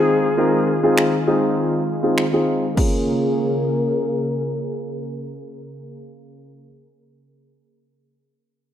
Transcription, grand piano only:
Already playing: C4 D#4 F4 G#4
0.37 C4 D#4 F4 A#4
0.83 C4 D#4 F4 G#4
1.27 C4 D#4 F4 G#4
2.03 C4 D#4 F4 G#4
2.33 C4 D#4 F4 G#4
2.75 A#3 C#4 F4 G#4

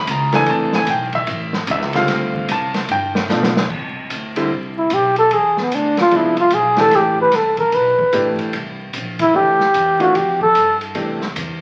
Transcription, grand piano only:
0.11 A#5
0.33 E3 A3 D4 A4 G#5
0.50 A5
0.75 G#5
0.90 G5
1.15 E5
1.71 E5
1.94 D3 G3 C4 F4 F5
2.52 A5
2.92 G5
3.30 F3 A3 B3 D4
4.37 D3 G3 C4 E4
6.12 F3 G#3 B3 D4
6.78 E3 A3 D4 G4
8.13 E3 A3 D4 G4
9.34 E3 A3 D4 G4
10.00 E3 A3 D4 F4
10.95 E3 A3 D4 G4

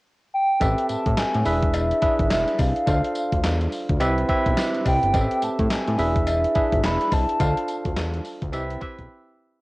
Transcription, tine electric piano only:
0.60 C4 G4 A4 B4 E5
1.45 D4 E4 G#4 B4 E5
2.02 D4 E4 G#4 B4 E5
2.86 D4 F4 A4 C5 F5
4.00 C4 E4 G4 B4 E5
4.28 C4 E4 G4 B4 E5
5.13 C4 G4 A4 B4 D#5
5.21 E5
5.98 D4 E4 G#4 B4 E5
6.55 D4 E4 G#4 B4 E5
7.40 D4 F4 A4 C5 F5
8.53 C4 E4 G4 B4 E5
8.81 C4 E4 G4 B4 E5

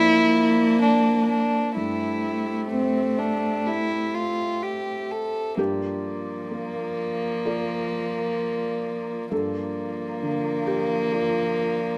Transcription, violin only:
Already playing: E4
0.82 D4
1.29 D4
1.77 E4
2.71 C4
3.18 D4
3.67 E4
4.15 F4
4.63 G4
5.11 A4
5.60 A#3
9.32 A#3

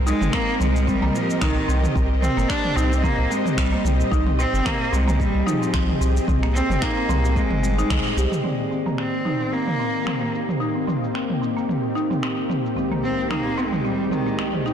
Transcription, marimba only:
0.07 D#4
0.21 C4
0.33 C4
0.60 C4
0.87 C4
1.02 A#3
1.41 D#4
1.56 C4
1.68 C4
1.95 C4
2.22 C4
2.37 A#3
2.77 D#4
2.92 C4
3.04 C4
3.31 C4
3.58 C4
3.73 A#3
4.12 D#4
4.26 C4
4.39 C4
4.66 C4
4.93 C4
5.08 A#3
5.47 D#4
5.62 C4
5.74 C4
6.01 C4
6.28 C4
6.43 A#3
6.82 D#4
6.97 C4
7.09 C4
7.36 C4
7.63 G3
7.78 D#4
8.17 G4
8.44 C4
8.71 C4
8.86 A#3
9.25 D#4
9.40 C4
9.52 C4
9.79 C4
10.06 C4
10.21 A#3
10.60 D#4
10.75 C4
10.87 C4
11.14 C4
11.42 C4
11.57 A#3
11.95 D#4
12.10 C4
12.23 C4
12.49 C4
12.77 C4
12.92 A#3
13.31 D#4
13.46 C4
13.58 C4
13.85 C4
14.12 C4
14.27 A#3
14.66 D#4

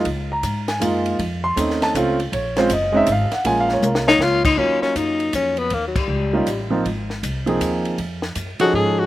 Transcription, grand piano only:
0.32 A#5
0.68 G#5
0.80 G#3 A#3 D#4 F4
1.44 C6
1.56 A3 C4 C#4 D#4
1.83 A5
1.95 A3 C4 C#4 F4
2.33 C#5
2.57 G#3 C4 C#4 F4 C5
2.73 D#5
2.92 G#3 C4 C#4 D#4
2.97 E5
3.12 F5
3.34 F#5
3.44 G#3 A#3 C#4 F4 G#5
3.60 F5
3.73 C#5
3.84 A#4
4.07 C#5
4.57 F#3 A#3 C#4 D#4 F4
6.33 G3 A#3 C#4 D#4 F4
6.70 F3 A#3 C4 D#4 F4
7.46 F3 A#3 C4 D#4 G#4
8.60 F3 C#4 D#4 G#4 A4

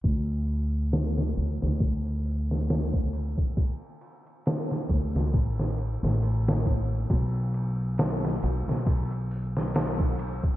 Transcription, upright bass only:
0.04 D2
1.37 D2
1.63 D2
4.90 D2
5.15 D2
5.34 A1
6.03 A1
7.10 B1
8.43 B1
8.68 B1

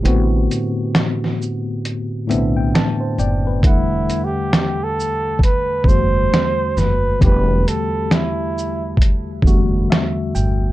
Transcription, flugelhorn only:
3.64 E4
4.24 G4
4.84 A4
5.44 B4
5.88 C5
6.78 B4
7.23 B4
7.68 A4
8.13 E4

